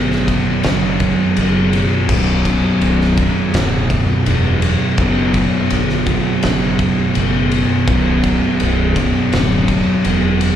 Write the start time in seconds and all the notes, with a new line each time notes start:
Already playing: G1 B1 F#2 B2
0.11 snare
0.27 B1 F#2 B2, kick, ride
0.63 F#1, snare, ride
1.00 kick, ride
1.37 F#1 B1 F#2 B2, ride
1.73 ride
2.09 B0 B1 F#2 B2, kick, crash
2.45 kick, ride
2.81 B0, ride
3.01 snare
3.17 B1 F#2 B2, kick, ride
3.54 D1, snare, ride
3.90 kick, ride
4.25 E1 B1 F#2 B2, ride
4.62 ride
4.98 F#1 B1 F#2 B2, kick, ride
5.34 kick, ride
5.70 G1, ride
5.89 snare
6.06 B1 F#2 B2, kick, ride
6.43 F#1, snare, ride
6.79 kick, ride
7.15 F#1 B1 F#2 B2, ride
7.51 ride
7.87 B0 B1 F#2 B2, kick, ride
8.24 kick, ride
8.60 B0, ride
8.95 B1 F#2 B2, kick, ride
9.33 D1, snare, ride
9.68 kick, ride
10.04 E1 B1 F#2 B2, ride
10.41 ride